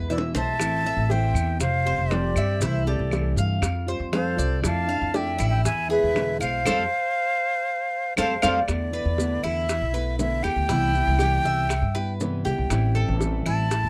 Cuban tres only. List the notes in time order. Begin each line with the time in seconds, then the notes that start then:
0.10 E5
0.35 C5
0.86 E5
1.11 C5
1.86 C5
2.37 E5
2.62 E4
2.87 G4
3.38 F5
3.88 C5
4.13 F5
4.38 D5
4.89 F5
5.14 D5
5.39 E4
5.90 G#4
6.41 F5
6.66 A4 C5 F5
8.18 A4 C5 F5
8.42 A4 C5 F5
8.93 B4
9.44 E4
9.94 B4
10.44 G4
10.69 E4
11.20 G4
11.45 E5
11.95 B4
12.45 G4
12.95 A4
13.46 E4